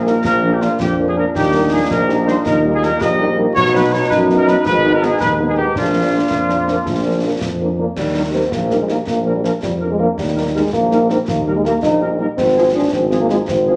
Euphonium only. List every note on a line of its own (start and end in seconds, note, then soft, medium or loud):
0.00 0.82 A#3 medium
0.80 2.45 D4 medium
2.46 2.97 D#4 medium
3.01 3.57 G4 medium
3.56 4.11 F#4 medium
4.12 5.45 D#4 medium
5.76 7.65 D4 medium
7.78 7.87 A#3 medium
7.97 8.31 G3 medium
8.33 8.53 C4 medium
8.52 8.79 A#3 medium
8.80 8.84 G#3 medium
8.89 8.97 A#3 medium
9.08 9.20 A#3 medium
9.36 9.40 G3 medium
9.44 9.52 F3 soft
9.63 9.75 G3 medium
9.91 9.99 G#3 medium
10.00 10.08 A#3 medium
10.18 10.56 G3 medium
10.55 10.72 G#3 medium
10.73 11.07 A#3 medium
11.10 11.18 C4 medium
11.28 11.40 A#3 medium
11.56 11.64 G#3 medium
11.64 11.81 A#3 medium
11.82 12.17 D#4 medium
12.38 12.72 C4 medium
12.75 12.92 D4 medium
12.94 13.06 C4 medium
13.21 13.29 A#3 medium
13.30 13.38 G#3 medium
13.48 13.76 C4 medium